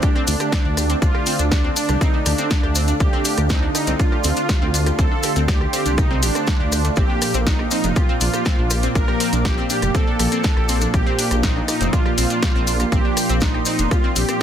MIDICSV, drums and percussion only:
0, 0, Header, 1, 2, 480
1, 0, Start_track
1, 0, Tempo, 495868
1, 987, Time_signature, 4, 2, 24, 8
1, 13964, End_track
2, 0, Start_track
2, 0, Title_t, "Drums"
2, 22, Note_on_c, 9, 70, 37
2, 27, Note_on_c, 9, 37, 53
2, 27, Note_on_c, 9, 42, 34
2, 28, Note_on_c, 9, 36, 114
2, 119, Note_off_c, 9, 70, 0
2, 124, Note_off_c, 9, 37, 0
2, 124, Note_off_c, 9, 42, 0
2, 125, Note_off_c, 9, 36, 0
2, 264, Note_on_c, 9, 70, 93
2, 267, Note_on_c, 9, 46, 106
2, 361, Note_off_c, 9, 70, 0
2, 364, Note_off_c, 9, 46, 0
2, 388, Note_on_c, 9, 37, 50
2, 388, Note_on_c, 9, 42, 49
2, 389, Note_on_c, 9, 70, 52
2, 485, Note_off_c, 9, 37, 0
2, 485, Note_off_c, 9, 42, 0
2, 486, Note_off_c, 9, 70, 0
2, 508, Note_on_c, 9, 36, 120
2, 508, Note_on_c, 9, 38, 116
2, 508, Note_on_c, 9, 42, 37
2, 508, Note_on_c, 9, 70, 40
2, 604, Note_off_c, 9, 36, 0
2, 604, Note_off_c, 9, 38, 0
2, 604, Note_off_c, 9, 42, 0
2, 605, Note_off_c, 9, 70, 0
2, 747, Note_on_c, 9, 37, 52
2, 747, Note_on_c, 9, 46, 92
2, 753, Note_on_c, 9, 70, 90
2, 844, Note_off_c, 9, 37, 0
2, 844, Note_off_c, 9, 46, 0
2, 849, Note_off_c, 9, 70, 0
2, 866, Note_on_c, 9, 70, 50
2, 868, Note_on_c, 9, 42, 48
2, 962, Note_off_c, 9, 70, 0
2, 965, Note_off_c, 9, 42, 0
2, 987, Note_on_c, 9, 36, 119
2, 987, Note_on_c, 9, 42, 33
2, 990, Note_on_c, 9, 70, 42
2, 1084, Note_off_c, 9, 36, 0
2, 1084, Note_off_c, 9, 42, 0
2, 1087, Note_off_c, 9, 70, 0
2, 1108, Note_on_c, 9, 37, 54
2, 1205, Note_off_c, 9, 37, 0
2, 1220, Note_on_c, 9, 70, 84
2, 1227, Note_on_c, 9, 46, 112
2, 1317, Note_off_c, 9, 70, 0
2, 1324, Note_off_c, 9, 46, 0
2, 1344, Note_on_c, 9, 70, 54
2, 1348, Note_on_c, 9, 42, 47
2, 1441, Note_off_c, 9, 70, 0
2, 1445, Note_off_c, 9, 42, 0
2, 1466, Note_on_c, 9, 70, 41
2, 1467, Note_on_c, 9, 36, 127
2, 1467, Note_on_c, 9, 37, 52
2, 1467, Note_on_c, 9, 38, 116
2, 1467, Note_on_c, 9, 42, 35
2, 1563, Note_off_c, 9, 70, 0
2, 1564, Note_off_c, 9, 36, 0
2, 1564, Note_off_c, 9, 37, 0
2, 1564, Note_off_c, 9, 38, 0
2, 1564, Note_off_c, 9, 42, 0
2, 1707, Note_on_c, 9, 46, 90
2, 1708, Note_on_c, 9, 70, 97
2, 1803, Note_off_c, 9, 46, 0
2, 1805, Note_off_c, 9, 70, 0
2, 1828, Note_on_c, 9, 37, 50
2, 1828, Note_on_c, 9, 42, 43
2, 1828, Note_on_c, 9, 70, 54
2, 1924, Note_off_c, 9, 37, 0
2, 1924, Note_off_c, 9, 42, 0
2, 1925, Note_off_c, 9, 70, 0
2, 1947, Note_on_c, 9, 36, 116
2, 1948, Note_on_c, 9, 42, 34
2, 1952, Note_on_c, 9, 70, 44
2, 2044, Note_off_c, 9, 36, 0
2, 2044, Note_off_c, 9, 42, 0
2, 2049, Note_off_c, 9, 70, 0
2, 2187, Note_on_c, 9, 37, 49
2, 2187, Note_on_c, 9, 46, 106
2, 2187, Note_on_c, 9, 70, 83
2, 2283, Note_off_c, 9, 70, 0
2, 2284, Note_off_c, 9, 37, 0
2, 2284, Note_off_c, 9, 46, 0
2, 2305, Note_on_c, 9, 70, 55
2, 2308, Note_on_c, 9, 42, 46
2, 2402, Note_off_c, 9, 70, 0
2, 2405, Note_off_c, 9, 42, 0
2, 2426, Note_on_c, 9, 70, 39
2, 2427, Note_on_c, 9, 36, 121
2, 2427, Note_on_c, 9, 38, 111
2, 2427, Note_on_c, 9, 42, 34
2, 2523, Note_off_c, 9, 70, 0
2, 2524, Note_off_c, 9, 36, 0
2, 2524, Note_off_c, 9, 38, 0
2, 2524, Note_off_c, 9, 42, 0
2, 2547, Note_on_c, 9, 37, 50
2, 2644, Note_off_c, 9, 37, 0
2, 2664, Note_on_c, 9, 70, 104
2, 2666, Note_on_c, 9, 46, 97
2, 2761, Note_off_c, 9, 70, 0
2, 2763, Note_off_c, 9, 46, 0
2, 2785, Note_on_c, 9, 70, 59
2, 2787, Note_on_c, 9, 42, 48
2, 2882, Note_off_c, 9, 70, 0
2, 2884, Note_off_c, 9, 42, 0
2, 2904, Note_on_c, 9, 70, 35
2, 2907, Note_on_c, 9, 36, 124
2, 2907, Note_on_c, 9, 37, 51
2, 2907, Note_on_c, 9, 42, 30
2, 3001, Note_off_c, 9, 70, 0
2, 3004, Note_off_c, 9, 36, 0
2, 3004, Note_off_c, 9, 37, 0
2, 3004, Note_off_c, 9, 42, 0
2, 3143, Note_on_c, 9, 70, 101
2, 3146, Note_on_c, 9, 46, 105
2, 3240, Note_off_c, 9, 70, 0
2, 3243, Note_off_c, 9, 46, 0
2, 3266, Note_on_c, 9, 70, 55
2, 3268, Note_on_c, 9, 37, 52
2, 3268, Note_on_c, 9, 42, 44
2, 3362, Note_off_c, 9, 70, 0
2, 3365, Note_off_c, 9, 37, 0
2, 3365, Note_off_c, 9, 42, 0
2, 3383, Note_on_c, 9, 70, 44
2, 3387, Note_on_c, 9, 36, 127
2, 3387, Note_on_c, 9, 38, 115
2, 3387, Note_on_c, 9, 42, 34
2, 3480, Note_off_c, 9, 70, 0
2, 3484, Note_off_c, 9, 36, 0
2, 3484, Note_off_c, 9, 38, 0
2, 3484, Note_off_c, 9, 42, 0
2, 3628, Note_on_c, 9, 37, 52
2, 3628, Note_on_c, 9, 46, 96
2, 3633, Note_on_c, 9, 70, 94
2, 3725, Note_off_c, 9, 37, 0
2, 3725, Note_off_c, 9, 46, 0
2, 3729, Note_off_c, 9, 70, 0
2, 3746, Note_on_c, 9, 70, 57
2, 3749, Note_on_c, 9, 42, 43
2, 3843, Note_off_c, 9, 70, 0
2, 3845, Note_off_c, 9, 42, 0
2, 3867, Note_on_c, 9, 36, 120
2, 3868, Note_on_c, 9, 42, 31
2, 3871, Note_on_c, 9, 70, 37
2, 3964, Note_off_c, 9, 36, 0
2, 3965, Note_off_c, 9, 42, 0
2, 3967, Note_off_c, 9, 70, 0
2, 3989, Note_on_c, 9, 37, 50
2, 4086, Note_off_c, 9, 37, 0
2, 4102, Note_on_c, 9, 70, 86
2, 4108, Note_on_c, 9, 46, 104
2, 4199, Note_off_c, 9, 70, 0
2, 4205, Note_off_c, 9, 46, 0
2, 4224, Note_on_c, 9, 70, 62
2, 4229, Note_on_c, 9, 42, 45
2, 4320, Note_off_c, 9, 70, 0
2, 4326, Note_off_c, 9, 42, 0
2, 4346, Note_on_c, 9, 70, 42
2, 4347, Note_on_c, 9, 36, 124
2, 4348, Note_on_c, 9, 37, 52
2, 4348, Note_on_c, 9, 38, 108
2, 4348, Note_on_c, 9, 42, 33
2, 4442, Note_off_c, 9, 70, 0
2, 4444, Note_off_c, 9, 36, 0
2, 4445, Note_off_c, 9, 37, 0
2, 4445, Note_off_c, 9, 38, 0
2, 4445, Note_off_c, 9, 42, 0
2, 4588, Note_on_c, 9, 46, 97
2, 4597, Note_on_c, 9, 70, 102
2, 4685, Note_off_c, 9, 46, 0
2, 4693, Note_off_c, 9, 70, 0
2, 4709, Note_on_c, 9, 37, 54
2, 4709, Note_on_c, 9, 42, 46
2, 4709, Note_on_c, 9, 70, 54
2, 4806, Note_off_c, 9, 37, 0
2, 4806, Note_off_c, 9, 42, 0
2, 4806, Note_off_c, 9, 70, 0
2, 4828, Note_on_c, 9, 36, 119
2, 4828, Note_on_c, 9, 42, 31
2, 4829, Note_on_c, 9, 70, 42
2, 4924, Note_off_c, 9, 36, 0
2, 4925, Note_off_c, 9, 42, 0
2, 4926, Note_off_c, 9, 70, 0
2, 5062, Note_on_c, 9, 70, 89
2, 5068, Note_on_c, 9, 37, 53
2, 5068, Note_on_c, 9, 46, 108
2, 5159, Note_off_c, 9, 70, 0
2, 5165, Note_off_c, 9, 37, 0
2, 5165, Note_off_c, 9, 46, 0
2, 5188, Note_on_c, 9, 70, 53
2, 5189, Note_on_c, 9, 42, 43
2, 5285, Note_off_c, 9, 70, 0
2, 5286, Note_off_c, 9, 42, 0
2, 5308, Note_on_c, 9, 36, 127
2, 5308, Note_on_c, 9, 38, 106
2, 5308, Note_on_c, 9, 42, 35
2, 5310, Note_on_c, 9, 70, 38
2, 5404, Note_off_c, 9, 36, 0
2, 5405, Note_off_c, 9, 38, 0
2, 5405, Note_off_c, 9, 42, 0
2, 5407, Note_off_c, 9, 70, 0
2, 5430, Note_on_c, 9, 37, 53
2, 5527, Note_off_c, 9, 37, 0
2, 5548, Note_on_c, 9, 46, 91
2, 5552, Note_on_c, 9, 70, 101
2, 5645, Note_off_c, 9, 46, 0
2, 5649, Note_off_c, 9, 70, 0
2, 5669, Note_on_c, 9, 42, 41
2, 5669, Note_on_c, 9, 70, 54
2, 5766, Note_off_c, 9, 42, 0
2, 5766, Note_off_c, 9, 70, 0
2, 5787, Note_on_c, 9, 36, 122
2, 5788, Note_on_c, 9, 37, 55
2, 5788, Note_on_c, 9, 42, 31
2, 5788, Note_on_c, 9, 70, 39
2, 5884, Note_off_c, 9, 36, 0
2, 5885, Note_off_c, 9, 37, 0
2, 5885, Note_off_c, 9, 42, 0
2, 5885, Note_off_c, 9, 70, 0
2, 6027, Note_on_c, 9, 46, 105
2, 6027, Note_on_c, 9, 70, 95
2, 6124, Note_off_c, 9, 46, 0
2, 6124, Note_off_c, 9, 70, 0
2, 6149, Note_on_c, 9, 37, 54
2, 6149, Note_on_c, 9, 42, 44
2, 6152, Note_on_c, 9, 70, 59
2, 6245, Note_off_c, 9, 37, 0
2, 6245, Note_off_c, 9, 42, 0
2, 6249, Note_off_c, 9, 70, 0
2, 6262, Note_on_c, 9, 70, 37
2, 6268, Note_on_c, 9, 36, 126
2, 6268, Note_on_c, 9, 38, 111
2, 6268, Note_on_c, 9, 42, 34
2, 6359, Note_off_c, 9, 70, 0
2, 6364, Note_off_c, 9, 36, 0
2, 6365, Note_off_c, 9, 38, 0
2, 6365, Note_off_c, 9, 42, 0
2, 6507, Note_on_c, 9, 70, 104
2, 6508, Note_on_c, 9, 37, 56
2, 6508, Note_on_c, 9, 46, 101
2, 6604, Note_off_c, 9, 70, 0
2, 6605, Note_off_c, 9, 37, 0
2, 6605, Note_off_c, 9, 46, 0
2, 6627, Note_on_c, 9, 70, 53
2, 6628, Note_on_c, 9, 42, 41
2, 6724, Note_off_c, 9, 70, 0
2, 6725, Note_off_c, 9, 42, 0
2, 6736, Note_on_c, 9, 70, 39
2, 6747, Note_on_c, 9, 36, 120
2, 6747, Note_on_c, 9, 42, 31
2, 6833, Note_off_c, 9, 70, 0
2, 6844, Note_off_c, 9, 36, 0
2, 6844, Note_off_c, 9, 42, 0
2, 6987, Note_on_c, 9, 37, 55
2, 6987, Note_on_c, 9, 46, 105
2, 6987, Note_on_c, 9, 70, 94
2, 7083, Note_off_c, 9, 37, 0
2, 7083, Note_off_c, 9, 46, 0
2, 7084, Note_off_c, 9, 70, 0
2, 7106, Note_on_c, 9, 70, 55
2, 7108, Note_on_c, 9, 42, 43
2, 7203, Note_off_c, 9, 70, 0
2, 7205, Note_off_c, 9, 42, 0
2, 7227, Note_on_c, 9, 36, 124
2, 7227, Note_on_c, 9, 38, 103
2, 7227, Note_on_c, 9, 42, 34
2, 7231, Note_on_c, 9, 70, 41
2, 7324, Note_off_c, 9, 36, 0
2, 7324, Note_off_c, 9, 38, 0
2, 7324, Note_off_c, 9, 42, 0
2, 7328, Note_off_c, 9, 70, 0
2, 7348, Note_on_c, 9, 37, 56
2, 7445, Note_off_c, 9, 37, 0
2, 7463, Note_on_c, 9, 70, 92
2, 7466, Note_on_c, 9, 46, 89
2, 7560, Note_off_c, 9, 70, 0
2, 7563, Note_off_c, 9, 46, 0
2, 7588, Note_on_c, 9, 42, 42
2, 7588, Note_on_c, 9, 70, 54
2, 7684, Note_off_c, 9, 70, 0
2, 7685, Note_off_c, 9, 42, 0
2, 7706, Note_on_c, 9, 70, 39
2, 7707, Note_on_c, 9, 37, 53
2, 7707, Note_on_c, 9, 42, 33
2, 7708, Note_on_c, 9, 36, 119
2, 7803, Note_off_c, 9, 70, 0
2, 7804, Note_off_c, 9, 36, 0
2, 7804, Note_off_c, 9, 37, 0
2, 7804, Note_off_c, 9, 42, 0
2, 7944, Note_on_c, 9, 70, 90
2, 7947, Note_on_c, 9, 46, 102
2, 8041, Note_off_c, 9, 70, 0
2, 8044, Note_off_c, 9, 46, 0
2, 8069, Note_on_c, 9, 37, 56
2, 8069, Note_on_c, 9, 42, 44
2, 8070, Note_on_c, 9, 70, 51
2, 8165, Note_off_c, 9, 37, 0
2, 8165, Note_off_c, 9, 42, 0
2, 8167, Note_off_c, 9, 70, 0
2, 8182, Note_on_c, 9, 70, 39
2, 8188, Note_on_c, 9, 36, 122
2, 8188, Note_on_c, 9, 38, 107
2, 8188, Note_on_c, 9, 42, 34
2, 8279, Note_off_c, 9, 70, 0
2, 8285, Note_off_c, 9, 36, 0
2, 8285, Note_off_c, 9, 38, 0
2, 8285, Note_off_c, 9, 42, 0
2, 8424, Note_on_c, 9, 70, 101
2, 8428, Note_on_c, 9, 37, 60
2, 8428, Note_on_c, 9, 46, 93
2, 8521, Note_off_c, 9, 70, 0
2, 8525, Note_off_c, 9, 37, 0
2, 8525, Note_off_c, 9, 46, 0
2, 8546, Note_on_c, 9, 70, 48
2, 8549, Note_on_c, 9, 42, 42
2, 8643, Note_off_c, 9, 70, 0
2, 8646, Note_off_c, 9, 42, 0
2, 8668, Note_on_c, 9, 36, 111
2, 8668, Note_on_c, 9, 42, 32
2, 8670, Note_on_c, 9, 70, 36
2, 8764, Note_off_c, 9, 42, 0
2, 8765, Note_off_c, 9, 36, 0
2, 8767, Note_off_c, 9, 70, 0
2, 8789, Note_on_c, 9, 37, 58
2, 8886, Note_off_c, 9, 37, 0
2, 8908, Note_on_c, 9, 46, 101
2, 8911, Note_on_c, 9, 70, 78
2, 9004, Note_off_c, 9, 46, 0
2, 9008, Note_off_c, 9, 70, 0
2, 9029, Note_on_c, 9, 42, 44
2, 9031, Note_on_c, 9, 70, 51
2, 9126, Note_off_c, 9, 42, 0
2, 9128, Note_off_c, 9, 70, 0
2, 9148, Note_on_c, 9, 36, 121
2, 9148, Note_on_c, 9, 37, 57
2, 9148, Note_on_c, 9, 38, 107
2, 9148, Note_on_c, 9, 42, 34
2, 9149, Note_on_c, 9, 70, 41
2, 9245, Note_off_c, 9, 36, 0
2, 9245, Note_off_c, 9, 37, 0
2, 9245, Note_off_c, 9, 38, 0
2, 9245, Note_off_c, 9, 42, 0
2, 9246, Note_off_c, 9, 70, 0
2, 9387, Note_on_c, 9, 70, 85
2, 9388, Note_on_c, 9, 46, 86
2, 9484, Note_off_c, 9, 70, 0
2, 9485, Note_off_c, 9, 46, 0
2, 9509, Note_on_c, 9, 37, 56
2, 9509, Note_on_c, 9, 42, 45
2, 9511, Note_on_c, 9, 70, 49
2, 9606, Note_off_c, 9, 37, 0
2, 9606, Note_off_c, 9, 42, 0
2, 9607, Note_off_c, 9, 70, 0
2, 9628, Note_on_c, 9, 36, 114
2, 9628, Note_on_c, 9, 42, 34
2, 9629, Note_on_c, 9, 70, 37
2, 9725, Note_off_c, 9, 36, 0
2, 9725, Note_off_c, 9, 42, 0
2, 9726, Note_off_c, 9, 70, 0
2, 9868, Note_on_c, 9, 37, 52
2, 9868, Note_on_c, 9, 46, 97
2, 9872, Note_on_c, 9, 70, 83
2, 9965, Note_off_c, 9, 37, 0
2, 9965, Note_off_c, 9, 46, 0
2, 9969, Note_off_c, 9, 70, 0
2, 9990, Note_on_c, 9, 42, 44
2, 9992, Note_on_c, 9, 70, 47
2, 10086, Note_off_c, 9, 42, 0
2, 10089, Note_off_c, 9, 70, 0
2, 10102, Note_on_c, 9, 70, 36
2, 10108, Note_on_c, 9, 36, 117
2, 10108, Note_on_c, 9, 38, 104
2, 10108, Note_on_c, 9, 42, 35
2, 10199, Note_off_c, 9, 70, 0
2, 10205, Note_off_c, 9, 36, 0
2, 10205, Note_off_c, 9, 38, 0
2, 10205, Note_off_c, 9, 42, 0
2, 10229, Note_on_c, 9, 37, 59
2, 10326, Note_off_c, 9, 37, 0
2, 10345, Note_on_c, 9, 70, 88
2, 10348, Note_on_c, 9, 46, 89
2, 10442, Note_off_c, 9, 70, 0
2, 10444, Note_off_c, 9, 46, 0
2, 10466, Note_on_c, 9, 70, 51
2, 10469, Note_on_c, 9, 42, 43
2, 10563, Note_off_c, 9, 70, 0
2, 10566, Note_off_c, 9, 42, 0
2, 10588, Note_on_c, 9, 36, 113
2, 10588, Note_on_c, 9, 37, 54
2, 10588, Note_on_c, 9, 42, 32
2, 10592, Note_on_c, 9, 70, 35
2, 10685, Note_off_c, 9, 36, 0
2, 10685, Note_off_c, 9, 37, 0
2, 10685, Note_off_c, 9, 42, 0
2, 10689, Note_off_c, 9, 70, 0
2, 10828, Note_on_c, 9, 46, 103
2, 10832, Note_on_c, 9, 70, 75
2, 10925, Note_off_c, 9, 46, 0
2, 10929, Note_off_c, 9, 70, 0
2, 10949, Note_on_c, 9, 37, 56
2, 10949, Note_on_c, 9, 42, 45
2, 10950, Note_on_c, 9, 70, 50
2, 11046, Note_off_c, 9, 37, 0
2, 11046, Note_off_c, 9, 42, 0
2, 11047, Note_off_c, 9, 70, 0
2, 11066, Note_on_c, 9, 70, 35
2, 11068, Note_on_c, 9, 36, 112
2, 11068, Note_on_c, 9, 38, 109
2, 11068, Note_on_c, 9, 42, 36
2, 11163, Note_off_c, 9, 70, 0
2, 11165, Note_off_c, 9, 36, 0
2, 11165, Note_off_c, 9, 38, 0
2, 11165, Note_off_c, 9, 42, 0
2, 11308, Note_on_c, 9, 37, 54
2, 11308, Note_on_c, 9, 46, 88
2, 11312, Note_on_c, 9, 70, 88
2, 11405, Note_off_c, 9, 37, 0
2, 11405, Note_off_c, 9, 46, 0
2, 11408, Note_off_c, 9, 70, 0
2, 11429, Note_on_c, 9, 42, 47
2, 11439, Note_on_c, 9, 70, 47
2, 11526, Note_off_c, 9, 42, 0
2, 11536, Note_off_c, 9, 70, 0
2, 11548, Note_on_c, 9, 36, 105
2, 11548, Note_on_c, 9, 42, 35
2, 11551, Note_on_c, 9, 70, 34
2, 11645, Note_off_c, 9, 36, 0
2, 11645, Note_off_c, 9, 42, 0
2, 11648, Note_off_c, 9, 70, 0
2, 11669, Note_on_c, 9, 37, 55
2, 11766, Note_off_c, 9, 37, 0
2, 11788, Note_on_c, 9, 46, 98
2, 11790, Note_on_c, 9, 70, 87
2, 11885, Note_off_c, 9, 46, 0
2, 11887, Note_off_c, 9, 70, 0
2, 11909, Note_on_c, 9, 42, 45
2, 11911, Note_on_c, 9, 70, 52
2, 12006, Note_off_c, 9, 42, 0
2, 12008, Note_off_c, 9, 70, 0
2, 12028, Note_on_c, 9, 36, 117
2, 12028, Note_on_c, 9, 37, 57
2, 12028, Note_on_c, 9, 38, 107
2, 12028, Note_on_c, 9, 42, 35
2, 12033, Note_on_c, 9, 70, 38
2, 12124, Note_off_c, 9, 37, 0
2, 12124, Note_off_c, 9, 38, 0
2, 12124, Note_off_c, 9, 42, 0
2, 12125, Note_off_c, 9, 36, 0
2, 12130, Note_off_c, 9, 70, 0
2, 12266, Note_on_c, 9, 70, 87
2, 12267, Note_on_c, 9, 46, 87
2, 12363, Note_off_c, 9, 70, 0
2, 12364, Note_off_c, 9, 46, 0
2, 12389, Note_on_c, 9, 37, 55
2, 12389, Note_on_c, 9, 42, 46
2, 12389, Note_on_c, 9, 70, 55
2, 12486, Note_off_c, 9, 37, 0
2, 12486, Note_off_c, 9, 42, 0
2, 12486, Note_off_c, 9, 70, 0
2, 12508, Note_on_c, 9, 36, 117
2, 12508, Note_on_c, 9, 42, 35
2, 12512, Note_on_c, 9, 70, 38
2, 12605, Note_off_c, 9, 36, 0
2, 12605, Note_off_c, 9, 42, 0
2, 12608, Note_off_c, 9, 70, 0
2, 12748, Note_on_c, 9, 37, 53
2, 12748, Note_on_c, 9, 46, 104
2, 12750, Note_on_c, 9, 70, 93
2, 12845, Note_off_c, 9, 37, 0
2, 12845, Note_off_c, 9, 46, 0
2, 12847, Note_off_c, 9, 70, 0
2, 12869, Note_on_c, 9, 42, 45
2, 12869, Note_on_c, 9, 70, 49
2, 12966, Note_off_c, 9, 42, 0
2, 12966, Note_off_c, 9, 70, 0
2, 12977, Note_on_c, 9, 70, 43
2, 12987, Note_on_c, 9, 38, 111
2, 12987, Note_on_c, 9, 42, 37
2, 12988, Note_on_c, 9, 36, 123
2, 13074, Note_off_c, 9, 70, 0
2, 13084, Note_off_c, 9, 38, 0
2, 13084, Note_off_c, 9, 42, 0
2, 13085, Note_off_c, 9, 36, 0
2, 13108, Note_on_c, 9, 37, 52
2, 13205, Note_off_c, 9, 37, 0
2, 13217, Note_on_c, 9, 70, 89
2, 13228, Note_on_c, 9, 46, 92
2, 13314, Note_off_c, 9, 70, 0
2, 13324, Note_off_c, 9, 46, 0
2, 13344, Note_on_c, 9, 70, 50
2, 13348, Note_on_c, 9, 42, 45
2, 13441, Note_off_c, 9, 70, 0
2, 13445, Note_off_c, 9, 42, 0
2, 13468, Note_on_c, 9, 36, 112
2, 13468, Note_on_c, 9, 37, 53
2, 13468, Note_on_c, 9, 42, 36
2, 13472, Note_on_c, 9, 70, 36
2, 13564, Note_off_c, 9, 36, 0
2, 13565, Note_off_c, 9, 37, 0
2, 13565, Note_off_c, 9, 42, 0
2, 13569, Note_off_c, 9, 70, 0
2, 13706, Note_on_c, 9, 70, 93
2, 13708, Note_on_c, 9, 46, 96
2, 13803, Note_off_c, 9, 70, 0
2, 13804, Note_off_c, 9, 46, 0
2, 13829, Note_on_c, 9, 37, 53
2, 13829, Note_on_c, 9, 42, 46
2, 13830, Note_on_c, 9, 70, 56
2, 13926, Note_off_c, 9, 37, 0
2, 13926, Note_off_c, 9, 42, 0
2, 13927, Note_off_c, 9, 70, 0
2, 13964, End_track
0, 0, End_of_file